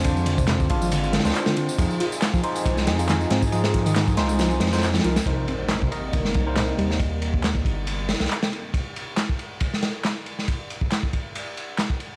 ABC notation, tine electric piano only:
X:1
M:4/4
L:1/16
Q:"Swing 16ths" 1/4=138
K:Cm
V:1 name="Tine electric piano"
[DFc]6 [DFf]4- [DFf] [DFc]4- [DFc] | [EFA]6 [EFc]4- [EFc] [EFA]4- [EFA] | [EFA]6 [EFc]4- [EFc] [EFc] z2 [EFB] z | [EBc]6 [EBe]4- [EBe] [EBc]4- [EBc] |
z16 | z16 | z16 |]